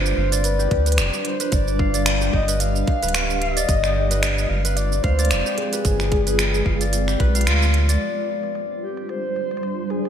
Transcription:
0.00 0.14 G1 loud
0.00 3.65 G3 medium
0.00 1.50 D4 loud
0.00 3.65 D4 medium
0.00 1.48 F4 medium
0.00 0.59 G4 loud
0.00 0.86 B4 medium
0.00 0.46 C5 loud
0.00 0.32 D5 medium
0.00 0.17 F5 loud
0.06 shaker soft
0.17 0.68 G1 medium
0.17 1.79 F5 medium
0.32 1.94 D5 medium
0.32 closed hi-hat soft
0.32 shaker medium
0.44 0.98 B4 medium
0.44 closed hi-hat soft
0.44 shaker medium
0.59 0.71 G4 medium
0.59 shaker soft
0.71 1.00 D2 loud
0.71 2.21 G4 medium
0.71 kick loud
0.71 closed hi-hat soft
0.86 1.40 B4 medium
0.86 closed hi-hat soft
0.86 shaker medium
0.92 closed hi-hat soft
0.98 1.11 F1 loud
0.98 finger snap medium
0.98 closed hi-hat soft
0.98 shaker medium
1.14 shaker soft
1.25 1.55 C5 medium
1.25 closed hi-hat soft
1.40 2.48 B4 medium
1.40 closed hi-hat soft
1.40 shaker medium
1.52 2.30 G1 loud
1.52 3.67 G4 medium
1.52 2.07 D5 loud
1.52 kick loud
1.52 closed hi-hat medium
1.52 shaker soft
1.68 shaker soft
1.79 3.41 F5 medium
1.79 kick medium
1.94 3.56 D5 medium
1.94 closed hi-hat soft
1.94 shaker medium
2.06 finger snap loud
2.06 closed hi-hat medium
2.06 shaker medium
2.21 2.33 G4 medium
2.21 shaker soft
2.33 2.84 G1 medium
2.33 3.83 G4 medium
2.33 2.59 D#5 medium
2.33 kick medium
2.48 3.02 B4 medium
2.48 closed hi-hat soft
2.48 shaker medium
2.60 3.43 F5 loud
2.60 closed hi-hat medium
2.60 shaker medium
2.76 shaker soft
2.87 kick loud
2.87 closed hi-hat soft
3.03 3.65 D1 medium
3.03 4.10 B4 medium
3.03 closed hi-hat soft
3.03 shaker medium
3.09 closed hi-hat medium
3.15 finger snap medium
3.15 closed hi-hat medium
3.15 shaker soft
3.30 shaker soft
3.42 4.50 D#5 loud
3.42 5.03 F5 medium
3.42 closed hi-hat soft
3.57 5.18 D5 medium
3.57 closed hi-hat soft
3.57 shaker medium
3.69 4.46 G1 loud
3.69 7.97 G#3 medium
3.69 7.97 C4 medium
3.69 7.97 F4 medium
3.69 kick loud
3.69 closed hi-hat medium
3.69 shaker medium
3.84 3.95 G4 medium
3.84 finger snap soft
3.84 shaker soft
3.96 5.46 G4 medium
4.11 4.64 B4 medium
4.11 closed hi-hat soft
4.11 shaker medium
4.23 finger snap loud
4.23 closed hi-hat medium
4.23 shaker medium
4.38 shaker soft
4.49 5.00 G1 medium
4.49 4.78 F5 medium
4.65 5.73 B4 medium
4.65 closed hi-hat soft
4.65 shaker medium
4.76 5.04 D5 medium
4.76 closed hi-hat medium
4.76 shaker soft
4.92 shaker soft
5.03 5.33 D2 medium
5.03 5.59 C5 loud
5.03 6.65 F5 medium
5.03 kick medium
5.03 closed hi-hat soft
5.19 6.81 D5 medium
5.19 closed hi-hat soft
5.19 shaker medium
5.25 closed hi-hat medium
5.31 5.43 F1 medium
5.31 finger snap medium
5.31 closed hi-hat medium
5.31 shaker soft
5.46 5.57 G4 medium
5.46 shaker soft
5.58 7.08 G4 medium
5.58 7.47 G#4 medium
5.58 closed hi-hat soft
5.73 6.27 B4 medium
5.73 closed hi-hat soft
5.73 shaker medium
5.85 6.62 G1 loud
5.85 7.99 B4 medium
5.85 kick loud
5.85 closed hi-hat medium
5.85 shaker medium
6.00 finger snap soft
6.00 shaker soft
6.12 kick medium
6.12 closed hi-hat soft
6.27 7.20 B4 medium
6.27 closed hi-hat soft
6.27 shaker medium
6.39 finger snap loud
6.39 closed hi-hat medium
6.39 shaker medium
6.54 shaker soft
6.66 7.16 G1 loud
6.66 7.34 F5 medium
6.66 kick medium
6.81 7.88 D5 medium
6.81 closed hi-hat soft
6.81 shaker medium
6.93 closed hi-hat medium
6.93 shaker medium
7.08 9.43 G4 medium
7.08 finger snap soft
7.08 shaker soft
7.20 7.49 B1 loud
7.20 9.25 B4 loud
7.20 kick loud
7.20 closed hi-hat soft
7.35 9.01 F5 medium
7.35 closed hi-hat soft
7.35 shaker medium
7.41 closed hi-hat medium
7.47 7.98 D2 loud
7.47 9.99 F4 medium
7.47 finger snap medium
7.47 closed hi-hat medium
7.47 shaker soft
7.62 shaker soft
7.74 closed hi-hat soft
7.89 9.73 D5 medium
7.89 closed hi-hat soft
7.89 shaker medium
8.01 10.09 G3 medium
8.01 10.09 D4 medium
8.01 10.09 F4 medium
8.01 10.09 C5 medium
8.01 closed hi-hat medium
8.43 closed hi-hat soft
8.55 closed hi-hat soft
8.82 9.07 G4 medium
8.97 closed hi-hat soft
9.09 9.92 C5 loud
9.09 closed hi-hat soft
9.36 closed hi-hat soft
9.51 closed hi-hat soft
9.57 closed hi-hat soft
9.63 closed hi-hat soft
9.90 10.09 G#4 medium
9.90 closed hi-hat soft
10.05 closed hi-hat soft

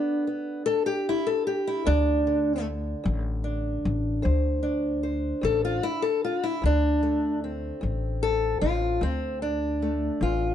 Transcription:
0.00 0.19 D2 medium
0.00 1.86 D3 medium
0.00 0.26 B3 soft
0.00 0.27 D4 loud
0.27 0.65 B3 soft
0.66 1.38 D2 medium
0.66 0.86 A4 loud
0.86 1.06 G4 loud
1.09 1.27 E4 loud
1.27 1.46 A4 medium
1.47 1.66 G4 medium
1.67 1.86 E4 medium
1.85 2.57 D2 medium
1.85 2.93 D2 medium
1.85 2.66 D4 loud
2.27 10.55 D3 medium
3.04 3.76 A1 loud
3.04 3.76 D2 medium
3.44 4.61 D4 soft
3.85 4.20 A1 medium
4.22 4.95 D2 medium
4.22 5.31 D2 medium
4.22 5.02 C5 soft
4.63 6.57 D4 soft
5.03 5.83 C5 soft
5.41 5.79 A1 medium
5.41 6.14 D2 medium
5.41 5.64 A4 loud
5.65 5.84 F4 loud
5.83 6.03 E4 loud
6.02 6.22 A4 loud
6.25 6.44 F4 medium
6.43 6.63 E4 medium
6.62 7.34 D2 medium
6.62 7.70 D2 medium
6.62 7.43 D4 medium
7.03 9.81 A3 medium
7.44 9.02 C4 soft
7.81 8.54 A1 medium
7.81 8.53 D2 medium
8.23 8.61 A4 loud
8.61 8.97 A1 medium
8.61 9.01 F4 medium
9.01 10.08 D2 medium
9.01 9.73 D2 medium
9.01 9.42 C4 medium
9.42 10.21 D4 medium
9.82 10.55 A3 soft
10.21 10.55 A1 medium
10.21 10.55 E2 medium
10.21 10.55 F4 medium

